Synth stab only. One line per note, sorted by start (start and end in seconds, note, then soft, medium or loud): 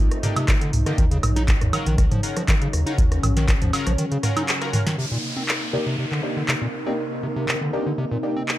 0.23 0.36 A#3 medium
0.23 0.36 D4 medium
0.23 0.36 D#4 medium
0.23 0.36 G4 medium
0.86 0.97 A#3 medium
0.86 0.97 D4 medium
0.86 0.97 D#4 medium
0.86 0.97 G4 loud
1.73 1.86 C#4 loud
1.73 1.86 F4 medium
1.73 1.86 F#4 medium
1.73 1.86 A#4 loud
2.23 2.36 C#4 medium
2.23 2.36 F4 medium
2.23 2.36 F#4 medium
2.23 2.36 A#4 medium
2.86 2.98 C#4 medium
2.86 2.98 F4 medium
2.86 2.98 F#4 medium
2.86 2.98 A#4 medium
3.73 3.86 C#4 loud
3.73 3.86 F4 loud
3.73 3.86 F#4 loud
3.73 3.86 A#4 loud
4.23 4.58 C#4 medium
4.23 4.58 F4 medium
4.23 4.58 F#4 medium
4.23 4.58 A#4 loud
4.62 4.70 C#4 loud
4.62 4.70 F4 medium
4.62 4.70 F#4 medium
4.62 4.70 A#4 loud
4.73 4.81 C#4 medium
4.73 4.81 F4 medium
4.73 4.81 F#4 medium
4.73 4.81 A#4 loud
5.73 5.86 A#3 loud
5.73 5.86 D4 medium
5.73 5.86 D#4 medium
5.73 5.86 G4 loud
6.23 6.36 A#3 medium
6.23 6.36 D4 medium
6.23 6.36 D#4 medium
6.23 6.36 G4 medium
6.86 6.98 A#3 medium
6.86 6.98 D4 medium
6.86 6.98 D#4 medium
6.86 6.98 G4 medium
7.73 7.86 A#3 loud
7.73 7.86 D4 medium
7.73 7.86 D#4 medium
7.73 7.86 G4 loud
8.23 8.36 A#3 medium
8.23 8.36 D4 medium
8.23 8.36 D#4 medium
8.23 8.36 G4 medium